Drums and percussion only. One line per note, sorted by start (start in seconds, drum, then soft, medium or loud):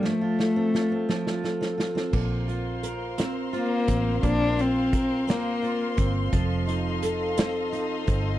0.04 snare soft
0.40 snare medium
0.75 snare medium
1.09 snare medium
1.27 snare medium
1.44 snare medium
1.62 snare medium
1.80 snare medium
1.97 snare medium
2.13 kick medium
2.13 crash medium
2.49 closed hi-hat medium
2.83 closed hi-hat medium
3.18 snare medium
3.18 closed hi-hat medium
3.54 closed hi-hat soft
3.88 kick medium
3.88 closed hi-hat medium
4.23 kick loud
4.23 closed hi-hat medium
4.59 closed hi-hat medium
4.93 kick medium
4.93 closed hi-hat medium
5.28 snare loud
5.28 closed hi-hat medium
5.64 closed hi-hat soft
5.97 kick medium
5.97 closed hi-hat medium
6.33 kick medium
6.33 closed hi-hat medium
6.68 closed hi-hat medium
7.02 closed hi-hat medium
7.37 snare loud
7.37 closed hi-hat medium
7.73 closed hi-hat soft
8.07 kick medium
8.07 closed hi-hat medium